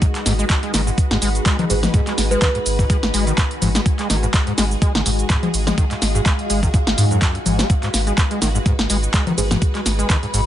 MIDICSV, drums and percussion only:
0, 0, Header, 1, 2, 480
1, 0, Start_track
1, 0, Tempo, 480000
1, 18, Time_signature, 4, 2, 24, 8
1, 10460, End_track
2, 0, Start_track
2, 0, Title_t, "Drums"
2, 18, Note_on_c, 9, 36, 117
2, 19, Note_on_c, 9, 42, 80
2, 22, Note_on_c, 9, 82, 32
2, 118, Note_off_c, 9, 36, 0
2, 119, Note_off_c, 9, 42, 0
2, 122, Note_off_c, 9, 82, 0
2, 150, Note_on_c, 9, 42, 52
2, 152, Note_on_c, 9, 39, 37
2, 250, Note_off_c, 9, 42, 0
2, 252, Note_off_c, 9, 39, 0
2, 259, Note_on_c, 9, 38, 56
2, 259, Note_on_c, 9, 46, 99
2, 262, Note_on_c, 9, 82, 73
2, 359, Note_off_c, 9, 38, 0
2, 359, Note_off_c, 9, 46, 0
2, 362, Note_off_c, 9, 82, 0
2, 390, Note_on_c, 9, 42, 38
2, 394, Note_on_c, 9, 82, 44
2, 490, Note_off_c, 9, 42, 0
2, 494, Note_off_c, 9, 82, 0
2, 498, Note_on_c, 9, 36, 117
2, 498, Note_on_c, 9, 42, 80
2, 500, Note_on_c, 9, 39, 122
2, 502, Note_on_c, 9, 82, 32
2, 598, Note_off_c, 9, 36, 0
2, 598, Note_off_c, 9, 42, 0
2, 600, Note_off_c, 9, 39, 0
2, 602, Note_off_c, 9, 82, 0
2, 630, Note_on_c, 9, 42, 54
2, 730, Note_off_c, 9, 42, 0
2, 738, Note_on_c, 9, 38, 80
2, 738, Note_on_c, 9, 46, 103
2, 742, Note_on_c, 9, 82, 76
2, 838, Note_off_c, 9, 38, 0
2, 838, Note_off_c, 9, 46, 0
2, 842, Note_off_c, 9, 82, 0
2, 874, Note_on_c, 9, 82, 44
2, 974, Note_off_c, 9, 82, 0
2, 978, Note_on_c, 9, 36, 109
2, 979, Note_on_c, 9, 42, 78
2, 982, Note_on_c, 9, 82, 33
2, 1078, Note_off_c, 9, 36, 0
2, 1079, Note_off_c, 9, 42, 0
2, 1082, Note_off_c, 9, 82, 0
2, 1110, Note_on_c, 9, 38, 80
2, 1110, Note_on_c, 9, 42, 55
2, 1210, Note_off_c, 9, 38, 0
2, 1210, Note_off_c, 9, 42, 0
2, 1219, Note_on_c, 9, 46, 102
2, 1222, Note_on_c, 9, 82, 76
2, 1319, Note_off_c, 9, 46, 0
2, 1322, Note_off_c, 9, 82, 0
2, 1350, Note_on_c, 9, 42, 39
2, 1354, Note_on_c, 9, 82, 44
2, 1451, Note_off_c, 9, 42, 0
2, 1454, Note_off_c, 9, 82, 0
2, 1458, Note_on_c, 9, 36, 115
2, 1459, Note_on_c, 9, 42, 82
2, 1461, Note_on_c, 9, 39, 117
2, 1463, Note_on_c, 9, 82, 33
2, 1558, Note_off_c, 9, 36, 0
2, 1559, Note_off_c, 9, 42, 0
2, 1561, Note_off_c, 9, 39, 0
2, 1563, Note_off_c, 9, 82, 0
2, 1591, Note_on_c, 9, 42, 54
2, 1591, Note_on_c, 9, 64, 91
2, 1691, Note_off_c, 9, 42, 0
2, 1691, Note_off_c, 9, 64, 0
2, 1699, Note_on_c, 9, 46, 101
2, 1703, Note_on_c, 9, 82, 74
2, 1799, Note_off_c, 9, 46, 0
2, 1803, Note_off_c, 9, 82, 0
2, 1830, Note_on_c, 9, 38, 75
2, 1830, Note_on_c, 9, 64, 88
2, 1834, Note_on_c, 9, 82, 42
2, 1930, Note_off_c, 9, 38, 0
2, 1930, Note_off_c, 9, 64, 0
2, 1934, Note_off_c, 9, 82, 0
2, 1938, Note_on_c, 9, 36, 120
2, 1939, Note_on_c, 9, 42, 74
2, 1943, Note_on_c, 9, 82, 31
2, 2038, Note_off_c, 9, 36, 0
2, 2039, Note_off_c, 9, 42, 0
2, 2043, Note_off_c, 9, 82, 0
2, 2071, Note_on_c, 9, 42, 51
2, 2072, Note_on_c, 9, 39, 38
2, 2171, Note_off_c, 9, 42, 0
2, 2172, Note_off_c, 9, 39, 0
2, 2179, Note_on_c, 9, 38, 59
2, 2179, Note_on_c, 9, 46, 104
2, 2182, Note_on_c, 9, 82, 73
2, 2279, Note_off_c, 9, 38, 0
2, 2279, Note_off_c, 9, 46, 0
2, 2282, Note_off_c, 9, 82, 0
2, 2310, Note_on_c, 9, 42, 35
2, 2314, Note_on_c, 9, 82, 43
2, 2410, Note_off_c, 9, 42, 0
2, 2414, Note_off_c, 9, 82, 0
2, 2418, Note_on_c, 9, 36, 121
2, 2419, Note_on_c, 9, 42, 78
2, 2420, Note_on_c, 9, 39, 122
2, 2422, Note_on_c, 9, 82, 32
2, 2518, Note_off_c, 9, 36, 0
2, 2519, Note_off_c, 9, 42, 0
2, 2520, Note_off_c, 9, 39, 0
2, 2522, Note_off_c, 9, 82, 0
2, 2550, Note_on_c, 9, 42, 54
2, 2650, Note_off_c, 9, 42, 0
2, 2659, Note_on_c, 9, 46, 105
2, 2662, Note_on_c, 9, 82, 75
2, 2759, Note_off_c, 9, 46, 0
2, 2762, Note_off_c, 9, 82, 0
2, 2790, Note_on_c, 9, 36, 62
2, 2794, Note_on_c, 9, 82, 42
2, 2890, Note_off_c, 9, 36, 0
2, 2894, Note_off_c, 9, 82, 0
2, 2898, Note_on_c, 9, 36, 115
2, 2899, Note_on_c, 9, 42, 78
2, 2903, Note_on_c, 9, 82, 31
2, 2998, Note_off_c, 9, 36, 0
2, 2999, Note_off_c, 9, 42, 0
2, 3003, Note_off_c, 9, 82, 0
2, 3030, Note_on_c, 9, 38, 82
2, 3030, Note_on_c, 9, 42, 53
2, 3130, Note_off_c, 9, 38, 0
2, 3130, Note_off_c, 9, 42, 0
2, 3139, Note_on_c, 9, 46, 106
2, 3142, Note_on_c, 9, 82, 74
2, 3239, Note_off_c, 9, 46, 0
2, 3242, Note_off_c, 9, 82, 0
2, 3270, Note_on_c, 9, 42, 37
2, 3274, Note_on_c, 9, 82, 44
2, 3370, Note_off_c, 9, 42, 0
2, 3374, Note_off_c, 9, 82, 0
2, 3378, Note_on_c, 9, 36, 120
2, 3379, Note_on_c, 9, 42, 80
2, 3380, Note_on_c, 9, 39, 124
2, 3382, Note_on_c, 9, 82, 32
2, 3478, Note_off_c, 9, 36, 0
2, 3479, Note_off_c, 9, 42, 0
2, 3480, Note_off_c, 9, 39, 0
2, 3482, Note_off_c, 9, 82, 0
2, 3510, Note_on_c, 9, 42, 51
2, 3610, Note_off_c, 9, 42, 0
2, 3618, Note_on_c, 9, 46, 110
2, 3618, Note_on_c, 9, 64, 84
2, 3622, Note_on_c, 9, 82, 72
2, 3718, Note_off_c, 9, 46, 0
2, 3718, Note_off_c, 9, 64, 0
2, 3722, Note_off_c, 9, 82, 0
2, 3750, Note_on_c, 9, 38, 81
2, 3750, Note_on_c, 9, 42, 35
2, 3753, Note_on_c, 9, 82, 42
2, 3850, Note_off_c, 9, 38, 0
2, 3850, Note_off_c, 9, 42, 0
2, 3853, Note_off_c, 9, 82, 0
2, 3858, Note_on_c, 9, 36, 124
2, 3859, Note_on_c, 9, 42, 73
2, 3862, Note_on_c, 9, 82, 31
2, 3958, Note_off_c, 9, 36, 0
2, 3959, Note_off_c, 9, 42, 0
2, 3962, Note_off_c, 9, 82, 0
2, 3990, Note_on_c, 9, 42, 50
2, 3992, Note_on_c, 9, 39, 37
2, 4090, Note_off_c, 9, 42, 0
2, 4092, Note_off_c, 9, 39, 0
2, 4099, Note_on_c, 9, 38, 62
2, 4099, Note_on_c, 9, 46, 106
2, 4102, Note_on_c, 9, 82, 73
2, 4199, Note_off_c, 9, 38, 0
2, 4199, Note_off_c, 9, 46, 0
2, 4202, Note_off_c, 9, 82, 0
2, 4230, Note_on_c, 9, 42, 35
2, 4234, Note_on_c, 9, 82, 41
2, 4330, Note_off_c, 9, 42, 0
2, 4334, Note_off_c, 9, 82, 0
2, 4338, Note_on_c, 9, 36, 122
2, 4339, Note_on_c, 9, 42, 77
2, 4340, Note_on_c, 9, 39, 124
2, 4342, Note_on_c, 9, 82, 32
2, 4438, Note_off_c, 9, 36, 0
2, 4439, Note_off_c, 9, 42, 0
2, 4440, Note_off_c, 9, 39, 0
2, 4442, Note_off_c, 9, 82, 0
2, 4470, Note_on_c, 9, 42, 51
2, 4570, Note_off_c, 9, 42, 0
2, 4578, Note_on_c, 9, 38, 88
2, 4578, Note_on_c, 9, 46, 110
2, 4582, Note_on_c, 9, 82, 73
2, 4678, Note_off_c, 9, 38, 0
2, 4678, Note_off_c, 9, 46, 0
2, 4682, Note_off_c, 9, 82, 0
2, 4714, Note_on_c, 9, 82, 41
2, 4814, Note_off_c, 9, 82, 0
2, 4818, Note_on_c, 9, 36, 121
2, 4819, Note_on_c, 9, 42, 77
2, 4822, Note_on_c, 9, 82, 32
2, 4918, Note_off_c, 9, 36, 0
2, 4919, Note_off_c, 9, 42, 0
2, 4922, Note_off_c, 9, 82, 0
2, 4950, Note_on_c, 9, 38, 87
2, 4950, Note_on_c, 9, 42, 51
2, 5050, Note_off_c, 9, 38, 0
2, 5050, Note_off_c, 9, 42, 0
2, 5058, Note_on_c, 9, 46, 108
2, 5062, Note_on_c, 9, 82, 73
2, 5158, Note_off_c, 9, 46, 0
2, 5162, Note_off_c, 9, 82, 0
2, 5190, Note_on_c, 9, 42, 37
2, 5194, Note_on_c, 9, 82, 43
2, 5290, Note_off_c, 9, 42, 0
2, 5294, Note_off_c, 9, 82, 0
2, 5298, Note_on_c, 9, 36, 121
2, 5299, Note_on_c, 9, 42, 76
2, 5301, Note_on_c, 9, 39, 115
2, 5302, Note_on_c, 9, 82, 31
2, 5398, Note_off_c, 9, 36, 0
2, 5399, Note_off_c, 9, 42, 0
2, 5401, Note_off_c, 9, 39, 0
2, 5402, Note_off_c, 9, 82, 0
2, 5430, Note_on_c, 9, 42, 49
2, 5430, Note_on_c, 9, 64, 94
2, 5530, Note_off_c, 9, 42, 0
2, 5530, Note_off_c, 9, 64, 0
2, 5538, Note_on_c, 9, 46, 109
2, 5542, Note_on_c, 9, 82, 73
2, 5638, Note_off_c, 9, 46, 0
2, 5642, Note_off_c, 9, 82, 0
2, 5670, Note_on_c, 9, 38, 82
2, 5670, Note_on_c, 9, 64, 95
2, 5673, Note_on_c, 9, 82, 41
2, 5770, Note_off_c, 9, 38, 0
2, 5770, Note_off_c, 9, 64, 0
2, 5773, Note_off_c, 9, 82, 0
2, 5778, Note_on_c, 9, 36, 120
2, 5778, Note_on_c, 9, 42, 72
2, 5782, Note_on_c, 9, 82, 31
2, 5878, Note_off_c, 9, 36, 0
2, 5878, Note_off_c, 9, 42, 0
2, 5882, Note_off_c, 9, 82, 0
2, 5910, Note_on_c, 9, 42, 51
2, 5912, Note_on_c, 9, 39, 36
2, 6010, Note_off_c, 9, 42, 0
2, 6012, Note_off_c, 9, 39, 0
2, 6019, Note_on_c, 9, 38, 62
2, 6019, Note_on_c, 9, 46, 106
2, 6022, Note_on_c, 9, 82, 74
2, 6119, Note_off_c, 9, 38, 0
2, 6119, Note_off_c, 9, 46, 0
2, 6122, Note_off_c, 9, 82, 0
2, 6150, Note_on_c, 9, 42, 34
2, 6154, Note_on_c, 9, 82, 43
2, 6250, Note_off_c, 9, 42, 0
2, 6254, Note_off_c, 9, 82, 0
2, 6258, Note_on_c, 9, 36, 121
2, 6259, Note_on_c, 9, 42, 74
2, 6260, Note_on_c, 9, 39, 117
2, 6262, Note_on_c, 9, 82, 33
2, 6358, Note_off_c, 9, 36, 0
2, 6359, Note_off_c, 9, 42, 0
2, 6360, Note_off_c, 9, 39, 0
2, 6362, Note_off_c, 9, 82, 0
2, 6390, Note_on_c, 9, 42, 50
2, 6490, Note_off_c, 9, 42, 0
2, 6498, Note_on_c, 9, 46, 110
2, 6502, Note_on_c, 9, 82, 76
2, 6598, Note_off_c, 9, 46, 0
2, 6602, Note_off_c, 9, 82, 0
2, 6629, Note_on_c, 9, 36, 62
2, 6634, Note_on_c, 9, 82, 42
2, 6729, Note_off_c, 9, 36, 0
2, 6734, Note_off_c, 9, 82, 0
2, 6738, Note_on_c, 9, 36, 112
2, 6739, Note_on_c, 9, 42, 72
2, 6742, Note_on_c, 9, 82, 32
2, 6838, Note_off_c, 9, 36, 0
2, 6839, Note_off_c, 9, 42, 0
2, 6842, Note_off_c, 9, 82, 0
2, 6870, Note_on_c, 9, 38, 87
2, 6870, Note_on_c, 9, 42, 50
2, 6970, Note_off_c, 9, 38, 0
2, 6970, Note_off_c, 9, 42, 0
2, 6978, Note_on_c, 9, 46, 107
2, 6982, Note_on_c, 9, 82, 73
2, 7078, Note_off_c, 9, 46, 0
2, 7082, Note_off_c, 9, 82, 0
2, 7110, Note_on_c, 9, 42, 34
2, 7114, Note_on_c, 9, 82, 43
2, 7210, Note_off_c, 9, 42, 0
2, 7214, Note_off_c, 9, 82, 0
2, 7218, Note_on_c, 9, 36, 121
2, 7218, Note_on_c, 9, 42, 74
2, 7220, Note_on_c, 9, 39, 117
2, 7222, Note_on_c, 9, 82, 32
2, 7318, Note_off_c, 9, 36, 0
2, 7318, Note_off_c, 9, 42, 0
2, 7320, Note_off_c, 9, 39, 0
2, 7322, Note_off_c, 9, 82, 0
2, 7350, Note_on_c, 9, 42, 50
2, 7450, Note_off_c, 9, 42, 0
2, 7458, Note_on_c, 9, 46, 106
2, 7458, Note_on_c, 9, 64, 86
2, 7462, Note_on_c, 9, 82, 74
2, 7558, Note_off_c, 9, 46, 0
2, 7558, Note_off_c, 9, 64, 0
2, 7562, Note_off_c, 9, 82, 0
2, 7590, Note_on_c, 9, 38, 83
2, 7590, Note_on_c, 9, 42, 33
2, 7594, Note_on_c, 9, 82, 41
2, 7690, Note_off_c, 9, 38, 0
2, 7690, Note_off_c, 9, 42, 0
2, 7694, Note_off_c, 9, 82, 0
2, 7698, Note_on_c, 9, 36, 116
2, 7699, Note_on_c, 9, 42, 73
2, 7702, Note_on_c, 9, 82, 33
2, 7798, Note_off_c, 9, 36, 0
2, 7799, Note_off_c, 9, 42, 0
2, 7802, Note_off_c, 9, 82, 0
2, 7830, Note_on_c, 9, 42, 50
2, 7831, Note_on_c, 9, 39, 36
2, 7930, Note_off_c, 9, 42, 0
2, 7931, Note_off_c, 9, 39, 0
2, 7938, Note_on_c, 9, 38, 61
2, 7938, Note_on_c, 9, 46, 104
2, 7941, Note_on_c, 9, 82, 78
2, 8038, Note_off_c, 9, 38, 0
2, 8038, Note_off_c, 9, 46, 0
2, 8041, Note_off_c, 9, 82, 0
2, 8070, Note_on_c, 9, 42, 36
2, 8073, Note_on_c, 9, 82, 44
2, 8170, Note_off_c, 9, 42, 0
2, 8173, Note_off_c, 9, 82, 0
2, 8178, Note_on_c, 9, 36, 117
2, 8178, Note_on_c, 9, 42, 74
2, 8180, Note_on_c, 9, 39, 110
2, 8182, Note_on_c, 9, 82, 34
2, 8278, Note_off_c, 9, 36, 0
2, 8278, Note_off_c, 9, 42, 0
2, 8280, Note_off_c, 9, 39, 0
2, 8282, Note_off_c, 9, 82, 0
2, 8309, Note_on_c, 9, 42, 51
2, 8409, Note_off_c, 9, 42, 0
2, 8418, Note_on_c, 9, 38, 85
2, 8418, Note_on_c, 9, 46, 105
2, 8421, Note_on_c, 9, 82, 77
2, 8518, Note_off_c, 9, 38, 0
2, 8518, Note_off_c, 9, 46, 0
2, 8521, Note_off_c, 9, 82, 0
2, 8553, Note_on_c, 9, 82, 45
2, 8653, Note_off_c, 9, 82, 0
2, 8658, Note_on_c, 9, 36, 108
2, 8658, Note_on_c, 9, 42, 76
2, 8661, Note_on_c, 9, 82, 33
2, 8758, Note_off_c, 9, 36, 0
2, 8758, Note_off_c, 9, 42, 0
2, 8761, Note_off_c, 9, 82, 0
2, 8789, Note_on_c, 9, 38, 86
2, 8789, Note_on_c, 9, 42, 51
2, 8889, Note_off_c, 9, 38, 0
2, 8889, Note_off_c, 9, 42, 0
2, 8897, Note_on_c, 9, 46, 105
2, 8901, Note_on_c, 9, 82, 77
2, 8997, Note_off_c, 9, 46, 0
2, 9001, Note_off_c, 9, 82, 0
2, 9029, Note_on_c, 9, 42, 36
2, 9032, Note_on_c, 9, 82, 45
2, 9129, Note_off_c, 9, 42, 0
2, 9132, Note_off_c, 9, 82, 0
2, 9137, Note_on_c, 9, 42, 74
2, 9138, Note_on_c, 9, 36, 117
2, 9139, Note_on_c, 9, 39, 112
2, 9141, Note_on_c, 9, 82, 33
2, 9237, Note_off_c, 9, 42, 0
2, 9238, Note_off_c, 9, 36, 0
2, 9239, Note_off_c, 9, 39, 0
2, 9241, Note_off_c, 9, 82, 0
2, 9269, Note_on_c, 9, 42, 51
2, 9269, Note_on_c, 9, 64, 91
2, 9369, Note_off_c, 9, 42, 0
2, 9369, Note_off_c, 9, 64, 0
2, 9378, Note_on_c, 9, 46, 102
2, 9381, Note_on_c, 9, 82, 78
2, 9478, Note_off_c, 9, 46, 0
2, 9481, Note_off_c, 9, 82, 0
2, 9509, Note_on_c, 9, 38, 84
2, 9509, Note_on_c, 9, 64, 87
2, 9513, Note_on_c, 9, 82, 43
2, 9609, Note_off_c, 9, 38, 0
2, 9609, Note_off_c, 9, 64, 0
2, 9613, Note_off_c, 9, 82, 0
2, 9618, Note_on_c, 9, 36, 113
2, 9618, Note_on_c, 9, 42, 74
2, 9621, Note_on_c, 9, 82, 33
2, 9718, Note_off_c, 9, 36, 0
2, 9718, Note_off_c, 9, 42, 0
2, 9721, Note_off_c, 9, 82, 0
2, 9750, Note_on_c, 9, 42, 50
2, 9751, Note_on_c, 9, 39, 34
2, 9850, Note_off_c, 9, 42, 0
2, 9851, Note_off_c, 9, 39, 0
2, 9858, Note_on_c, 9, 38, 60
2, 9858, Note_on_c, 9, 46, 101
2, 9862, Note_on_c, 9, 82, 82
2, 9958, Note_off_c, 9, 38, 0
2, 9958, Note_off_c, 9, 46, 0
2, 9962, Note_off_c, 9, 82, 0
2, 9990, Note_on_c, 9, 42, 36
2, 9993, Note_on_c, 9, 82, 46
2, 10090, Note_off_c, 9, 42, 0
2, 10093, Note_off_c, 9, 82, 0
2, 10098, Note_on_c, 9, 36, 115
2, 10098, Note_on_c, 9, 42, 76
2, 10100, Note_on_c, 9, 39, 112
2, 10102, Note_on_c, 9, 82, 34
2, 10198, Note_off_c, 9, 36, 0
2, 10198, Note_off_c, 9, 42, 0
2, 10200, Note_off_c, 9, 39, 0
2, 10202, Note_off_c, 9, 82, 0
2, 10230, Note_on_c, 9, 42, 51
2, 10330, Note_off_c, 9, 42, 0
2, 10338, Note_on_c, 9, 46, 101
2, 10341, Note_on_c, 9, 82, 82
2, 10438, Note_off_c, 9, 46, 0
2, 10441, Note_off_c, 9, 82, 0
2, 10460, End_track
0, 0, End_of_file